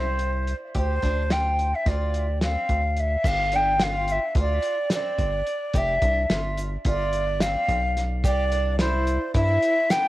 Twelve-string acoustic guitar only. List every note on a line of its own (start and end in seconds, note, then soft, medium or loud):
0.00 0.30 C4 medium
0.75 0.94 G4 medium
1.02 1.22 D4 medium
1.31 1.69 F4 medium
1.86 2.24 F4 medium
2.42 2.80 C4 medium
3.25 3.44 G4 medium
3.53 3.72 D4 medium
3.81 4.19 F4 medium
4.37 4.75 F4 medium
4.92 5.30 C4 medium
5.75 5.94 G4 medium
6.02 6.21 D4 medium
6.30 6.68 F4 medium
6.86 7.24 F4 medium
7.42 7.80 C4 medium
8.24 8.44 G4 medium
8.52 8.71 D4 medium
8.79 9.18 E4 medium
9.34 9.73 E4 medium
9.90 10.08 B3 medium